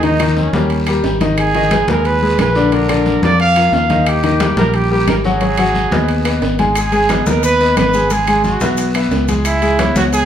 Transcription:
Already playing: fingered electric bass D#2
0.03 grand piano D#3 D#4 D#5, trumpet D#4, high conga, high timbale, long guiro
0.20 grand piano D#3 D#4 D#5, high conga, high timbale, claves
0.37 trumpet C#4, high conga, low timbale, short guiro
0.53 fingered electric bass D#2, grand piano G3 G4 A#4, high conga, short guiro
0.70 high conga, high timbale, long guiro
0.87 grand piano G3 G4 A#4, high conga, high timbale, claves
1.04 fingered electric bass G#1, high conga, low timbale, short guiro
1.21 grand piano D#3 D#4 D#5, high conga, high timbale, short guiro
1.37 trumpet G#4, high conga, high timbale, long guiro, claves
1.54 grand piano D#3 D#4 D#5, high conga, high timbale
1.71 grand piano G#3 G#4 B4, high conga, high timbale, low timbale, short guiro, claves
1.88 fingered electric bass D#2, grand piano G#3 G#4 B4, trumpet A#4, high conga, short guiro
2.05 trumpet B4, high conga, high timbale, long guiro
2.22 grand piano G#3 G#4 B4, high conga
2.38 fingered electric bass A#1, trumpet B4, high conga, high timbale, low timbale, short guiro, claves
2.55 grand piano D3 D4 D5, high conga, short guiro
2.72 grand piano D3 D4 D5, trumpet A#4, high conga, high timbale, long guiro
2.89 grand piano D3 D4 D5, high conga, high timbale, claves
3.05 high conga, low timbale, short guiro
3.22 fingered electric bass F2, grand piano F3 F4 A#4, trumpet D5, high conga, short guiro
3.39 trumpet F5, high conga, high timbale, long guiro
3.56 grand piano F3 F4 A#4, high conga, high timbale, claves
3.72 fingered electric bass D#2, trumpet F5, high conga, low timbale, short guiro
3.89 grand piano D#3 D#4 D#5, high conga, high timbale, short guiro
4.06 trumpet G4, high conga, high timbale, long guiro, claves
4.24 grand piano D#3 D#4 D#5, high timbale
4.40 grand piano G3 G4 A#4, high conga, high timbale, low timbale, short guiro, claves
4.56 fingered electric bass A#1, grand piano G3 G4 A#4, trumpet A#4, high conga, short guiro
4.74 trumpet G4, high conga, high timbale, long guiro
4.91 grand piano G3 G4 A#4, trumpet G4, high conga
5.07 fingered electric bass G#1, trumpet A#4, high conga, high timbale, low timbale, short guiro, claves
5.24 grand piano F#3 F#4 F#5, trumpet G#4, high conga, short guiro
5.41 grand piano F#3 F#4 F#5, high conga, high timbale, long guiro
5.58 grand piano F#3 F#4 F#5, high conga, high timbale, claves
5.75 high conga, low timbale, short guiro
5.91 fingered electric bass D#2, grand piano B3 B4 D#5, high conga, short guiro
6.08 high conga, high timbale, long guiro
6.25 grand piano B3 B4 D#5, high conga, high timbale, claves
6.42 fingered electric bass G#1, high conga, low timbale, short guiro
6.59 grand piano G#3 G#4 G#5, high conga, high timbale, short guiro
6.75 trumpet G#4, high conga, high timbale, long guiro, claves, maracas
6.92 grand piano G#3 G#4 G#5, high conga, high timbale, maracas
7.09 grand piano B3 B4 D#5, high conga, high timbale, low timbale, short guiro, claves, maracas
7.26 fingered electric bass D#2, grand piano B3 B4 D#5, trumpet A#4, high conga, short guiro, maracas
7.43 trumpet B4, high conga, high timbale, long guiro, maracas
7.60 grand piano B3 B4 D#5, high conga, maracas
7.77 fingered electric bass G#1, trumpet B4, high conga, high timbale, low timbale, short guiro, claves, maracas
7.93 grand piano G#3 G#4 G#5, high conga, short guiro, maracas
8.10 grand piano G#3 G#4 G#5, trumpet G#4, high conga, high timbale, long guiro, maracas
8.27 grand piano G#3 G#4 G#5, high conga, high timbale, claves, maracas
8.44 trumpet F#4, high conga, low timbale, short guiro, maracas
8.60 fingered electric bass B1, grand piano B3 B4 E5, high conga, short guiro, maracas
8.77 high conga, high timbale, long guiro, maracas
8.94 grand piano B3 B4 E5, high conga, high timbale, claves, maracas
9.11 fingered electric bass C#2, high conga, low timbale, short guiro, maracas
9.28 grand piano G#3 G#4 G#5, high conga, high timbale, short guiro, maracas
9.45 trumpet E4, high conga, high timbale, long guiro, claves, maracas
9.62 grand piano G#3 G#4 G#5, high conga, high timbale, maracas
9.79 grand piano B3 B4 C#5, high conga, high timbale, low timbale, short guiro, claves, maracas
9.95 fingered electric bass C#2, grand piano B3 B4 C#5, trumpet F#4, high conga, short guiro, maracas
10.13 trumpet G#4, high conga, high timbale, long guiro, maracas

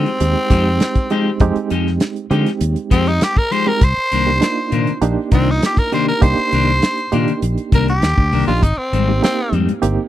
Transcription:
Already playing: reed electric piano G#3 C4 D#4 G4, tenor saxophone C4
0.06 closed hi-hat
0.20 fingered electric bass D#2, reed electric piano G#3 C4 D#4 G4, closed hi-hat
0.50 fingered electric bass F2, clean electric guitar F3 G#3 D#4 G4, reed electric piano G#3 C4 D#4 G4, kick, closed hi-hat
0.80 snare, closed hi-hat
0.95 kick, closed hi-hat
1.10 clean electric guitar F3 G#3 D#4 G4, reed electric piano G#3 C4 D#4 G4, closed hi-hat
1.40 fingered electric bass F2, reed electric piano G#3 C4 D#4 G4, kick, closed hi-hat
1.56 muted fingered electric bass stroke, closed hi-hat
1.70 fingered electric bass F2, clean electric guitar F3 G#3 D#4 G4, closed hi-hat
1.87 snare
2.00 snare, closed hi-hat
2.16 closed hi-hat
2.30 fingered electric bass D3, clean electric guitar F3 G#3 D#4 G4, reed electric piano G#3 C4 D#4 G4, closed hi-hat
2.46 snare, closed hi-hat
2.61 fingered electric bass D#2, closed hi-hat
2.76 closed hi-hat
2.90 fingered electric bass F2, clean electric guitar F3 G#3 D#4 G4, tenor saxophone C4, kick, closed hi-hat
3.06 tenor saxophone D#4, closed hi-hat
3.21 tenor saxophone G4, snare, closed hi-hat
3.37 tenor saxophone A#4, kick
3.51 clean electric guitar F3 G#3 D#4 G4, tenor saxophone C5, closed hi-hat
3.66 reed electric piano G#3 C4 D#4 G4, tenor saxophone A#4
3.81 fingered electric bass C2, tenor saxophone C5, kick, closed hi-hat
3.97 muted fingered electric bass stroke
4.11 fingered electric bass C2, clean electric guitar C3 D#3 A#3 D4, closed hi-hat
4.27 reed electric piano A#3 D4 D#4 G4
4.41 reed electric piano A#3 D4 D#4 F4, snare, closed hi-hat
4.71 fingered electric bass A#2, clean electric guitar C3 D#3 A#3 D4, closed hi-hat
4.87 closed hi-hat
5.01 fingered electric bass A#1, reed electric piano A#3 D4 D#4 G4, closed hi-hat
5.31 fingered electric bass C2, clean electric guitar C3 D#3 A#3 D4, reed electric piano A#3 D4 D#4 F4, tenor saxophone C4, kick, closed hi-hat
5.50 tenor saxophone D#4
5.62 tenor saxophone G4, snare, closed hi-hat
5.77 tenor saxophone A#4, kick, closed hi-hat
5.92 clean electric guitar C3 D#3 A#3 D4, reed electric piano A#3 D4 D#4 G4, tenor saxophone C5, closed hi-hat
6.08 tenor saxophone A#4
6.21 fingered electric bass C2, reed electric piano A#3 D4 D#4 G4, tenor saxophone C5, kick, closed hi-hat
6.37 closed hi-hat
6.52 fingered electric bass C2, clean electric guitar C3 D#3 A#3 D4, closed hi-hat
6.82 snare, closed hi-hat
6.98 closed hi-hat
7.12 fingered electric bass A#2, clean electric guitar C3 D#3 A#3 D4, reed electric piano A#3 D4 D#4 G4, closed hi-hat
7.28 closed hi-hat
7.42 fingered electric bass A#1, closed hi-hat
7.58 closed hi-hat
7.72 fingered electric bass C2, clean electric guitar C3 D#3 A#3 D4, tenor saxophone A#4, kick, closed hi-hat
7.88 tenor saxophone G4, closed hi-hat
8.02 fingered electric bass D#2, snare, closed hi-hat
8.18 fingered electric bass D2, kick
8.32 fingered electric bass C2, clean electric guitar C3 D#3 A#3 D4, open hi-hat
8.47 fingered electric bass A#1, reed electric piano A#3 D4 D#4 G4, tenor saxophone F4
8.63 fingered electric bass G#1, tenor saxophone D#4, kick, closed hi-hat
8.77 tenor saxophone C4
8.92 fingered electric bass G#1, clean electric guitar G#2 G3 C4 D#4, closed hi-hat
9.08 reed electric piano A#3 C4 D#4 G4
9.22 reed electric piano A#3 C4 D#4 G4, tenor saxophone C4, snare, closed hi-hat
9.52 fingered electric bass F2, clean electric guitar G#2 G3 C4 D#4, closed hi-hat
9.69 closed hi-hat
9.82 fingered electric bass G1, reed electric piano A#3 C4 D#4 G4, closed hi-hat

